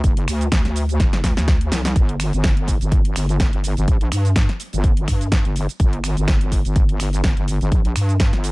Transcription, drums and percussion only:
0.04 kick loud
0.04 closed hi-hat medium
0.04 shaker soft
0.17 closed hi-hat medium
0.28 finger snap medium
0.28 open hi-hat loud
0.28 shaker medium
0.41 closed hi-hat soft
0.41 shaker soft
0.52 finger snap medium
0.52 kick loud
0.52 snare loud
0.52 closed hi-hat medium
0.52 shaker soft
0.65 snare soft
0.65 closed hi-hat medium
0.76 open hi-hat medium
0.76 shaker medium
0.89 closed hi-hat soft
0.89 shaker soft
1.00 kick loud
1.00 snare medium
1.00 closed hi-hat medium
1.00 shaker soft
1.13 snare medium
1.13 closed hi-hat medium
1.24 kick medium
1.24 snare medium
1.24 open hi-hat loud
1.24 shaker medium
1.37 snare medium
1.37 closed hi-hat soft
1.37 shaker soft
1.48 kick loud
1.48 snare medium
1.48 closed hi-hat medium
1.48 shaker soft
1.61 closed hi-hat medium
1.72 snare loud
1.72 open hi-hat medium
1.72 shaker medium
1.85 snare medium
1.85 closed hi-hat soft
1.85 shaker soft
1.96 kick loud
1.96 closed hi-hat medium
1.96 shaker soft
2.09 closed hi-hat medium
2.20 finger snap medium
2.20 open hi-hat loud
2.20 shaker medium
2.33 closed hi-hat soft
2.33 shaker soft
2.44 finger snap medium
2.44 kick loud
2.44 snare loud
2.44 closed hi-hat medium
2.44 shaker soft
2.57 closed hi-hat medium
2.68 kick medium
2.68 open hi-hat medium
2.68 shaker medium
2.81 closed hi-hat soft
2.81 shaker soft
2.92 kick loud
2.92 closed hi-hat medium
2.92 shaker soft
3.05 closed hi-hat medium
3.16 finger snap medium
3.16 open hi-hat loud
3.16 shaker medium
3.29 closed hi-hat soft
3.29 shaker soft
3.40 kick loud
3.40 snare loud
3.40 closed hi-hat medium
3.40 shaker soft
3.53 closed hi-hat medium
3.64 open hi-hat medium
3.64 shaker medium
3.77 closed hi-hat soft
3.77 shaker soft
3.88 kick loud
3.88 closed hi-hat medium
3.88 shaker soft
4.01 closed hi-hat medium
4.12 finger snap medium
4.12 open hi-hat loud
4.12 shaker medium
4.25 closed hi-hat soft
4.25 shaker soft
4.36 finger snap medium
4.36 kick loud
4.36 snare loud
4.36 closed hi-hat medium
4.36 shaker soft
4.49 snare soft
4.49 closed hi-hat medium
4.60 open hi-hat medium
4.60 shaker medium
4.73 closed hi-hat soft
4.73 shaker soft
4.84 kick loud
4.84 closed hi-hat medium
4.84 shaker soft
4.97 closed hi-hat medium
5.08 finger snap medium
5.08 kick medium
5.08 open hi-hat loud
5.08 shaker medium
5.21 closed hi-hat soft
5.21 shaker soft
5.32 kick loud
5.32 snare loud
5.32 closed hi-hat medium
5.32 shaker soft
5.45 closed hi-hat medium
5.56 open hi-hat loud
5.56 shaker medium
5.69 closed hi-hat soft
5.69 shaker soft
5.80 kick loud
5.80 closed hi-hat medium
5.80 shaker soft
5.93 closed hi-hat medium
6.04 finger snap medium
6.04 open hi-hat loud
6.04 shaker medium
6.17 closed hi-hat soft
6.17 shaker soft
6.28 finger snap medium
6.28 kick loud
6.28 snare loud
6.28 closed hi-hat medium
6.28 shaker soft
6.41 closed hi-hat medium
6.52 kick medium
6.52 open hi-hat loud
6.52 shaker medium
6.65 closed hi-hat soft
6.65 shaker soft
6.76 kick loud
6.76 closed hi-hat medium
6.76 shaker soft
6.89 closed hi-hat soft
7.00 finger snap medium
7.00 open hi-hat loud
7.00 shaker medium
7.13 closed hi-hat soft
7.13 shaker soft
7.24 kick loud
7.24 snare loud
7.24 closed hi-hat medium
7.24 shaker soft
7.37 closed hi-hat medium
7.48 open hi-hat loud
7.48 shaker medium
7.61 closed hi-hat soft
7.61 shaker soft
7.72 kick loud
7.72 closed hi-hat medium
7.72 shaker soft
7.85 closed hi-hat medium
7.96 finger snap medium
7.96 open hi-hat loud
7.96 shaker medium
8.09 closed hi-hat soft
8.09 shaker soft
8.20 finger snap medium
8.20 kick loud
8.20 snare loud
8.20 closed hi-hat medium
8.20 shaker soft
8.33 snare soft
8.33 closed hi-hat soft
8.44 open hi-hat loud
8.44 shaker medium

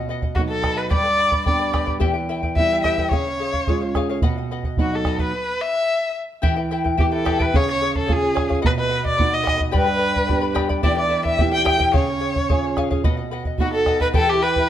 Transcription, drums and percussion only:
0.22 bombo low medium
0.36 bombo low medium
0.64 bombo rim soft
0.64 bombo low soft
0.91 bombo low medium
1.32 bombo low medium
1.46 bombo low medium
1.74 bombo rim soft
1.74 bombo low soft
1.87 bombo low soft
2.01 bombo low medium
2.43 bombo low soft
2.56 bombo low medium
2.84 bombo rim soft
2.84 bombo low soft
2.98 bombo low soft
3.11 bombo low medium
3.54 bombo low soft
3.67 bombo low medium
3.95 bombo rim soft
3.95 bombo low soft
4.22 bombo low medium
4.64 bombo low soft
4.77 bombo low medium
5.05 bombo rim soft
5.05 bombo low soft
5.19 bombo low medium
6.43 bombo low medium
6.85 bombo low soft
6.99 bombo low medium
7.26 bombo rim soft
7.26 bombo low soft
7.40 bombo low medium
7.54 bombo low medium
7.95 bombo low soft
8.09 bombo low medium
8.37 bombo rim soft
8.37 bombo low soft
8.51 bombo low soft
8.64 bombo low medium
9.05 bombo low soft
9.19 bombo low medium
9.47 bombo rim soft
9.47 bombo low soft
9.60 bombo low soft
9.74 bombo low medium
10.16 bombo low soft
10.29 bombo low medium
10.56 bombo rim soft
10.56 bombo low soft
10.70 bombo low soft
10.83 bombo low medium
11.25 bombo low soft
11.39 bombo low medium
11.66 bombo rim soft
11.66 bombo low soft
11.80 bombo low medium
11.94 bombo low medium
12.36 bombo low soft
12.50 bombo low medium
12.77 bombo rim soft
12.77 bombo low soft
12.91 bombo low soft
13.04 bombo low medium
13.45 bombo low soft
13.58 bombo low medium
13.86 bombo rim soft
13.86 bombo low soft
14.00 bombo low soft
14.14 bombo low medium
14.56 bombo low soft

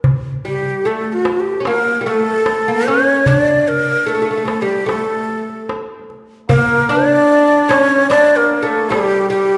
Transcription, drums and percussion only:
0.04 darbuka dum medium
0.65 darbuka ka soft
1.25 darbuka tek medium
1.46 darbuka ka soft
1.65 darbuka tek medium
2.05 darbuka ka soft
2.46 darbuka tek medium
3.26 darbuka dum medium
3.47 darbuka ka soft
3.68 darbuka ka soft
3.88 darbuka ka soft
4.08 darbuka ka soft
4.48 darbuka tek medium
4.89 darbuka tek medium
5.29 darbuka ka soft
5.49 darbuka ka soft
5.69 darbuka tek medium
6.10 darbuka ka soft
6.49 darbuka dum medium
6.70 darbuka ka soft
6.90 darbuka ka soft
7.11 darbuka ka soft
7.71 darbuka tek medium
8.11 darbuka tek medium
8.51 darbuka ka soft
8.92 darbuka tek medium
9.12 darbuka ka soft
9.32 darbuka ka soft

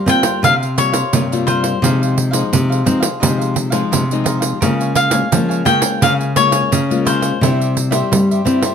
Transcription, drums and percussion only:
0.08 pandeiro medium
0.23 pandeiro medium
0.44 pandeiro medium
0.63 pandeiro soft
0.78 pandeiro medium
0.94 pandeiro medium
1.13 pandeiro medium
1.33 pandeiro soft
1.48 pandeiro medium
1.64 pandeiro medium
1.84 pandeiro medium
2.03 pandeiro soft
2.18 pandeiro medium
2.33 pandeiro medium
2.53 pandeiro medium
2.72 pandeiro soft
2.87 pandeiro medium
3.03 pandeiro medium
3.23 pandeiro medium
3.41 pandeiro soft
3.56 pandeiro medium
3.72 pandeiro medium
3.93 pandeiro medium
4.11 pandeiro soft
4.26 pandeiro medium
4.42 pandeiro medium
4.62 pandeiro medium
4.81 pandeiro soft
4.95 pandeiro medium
5.11 pandeiro medium
5.32 pandeiro medium
5.51 pandeiro soft
5.66 pandeiro medium
5.82 pandeiro medium
6.02 pandeiro medium
6.21 pandeiro soft
6.36 pandeiro medium
6.52 pandeiro medium
6.72 pandeiro medium
6.91 pandeiro soft
7.06 pandeiro medium
7.22 pandeiro medium
7.43 pandeiro medium
7.61 pandeiro soft
7.77 pandeiro medium
7.92 pandeiro medium
8.13 pandeiro medium
8.31 pandeiro soft
8.47 pandeiro medium
8.62 pandeiro medium

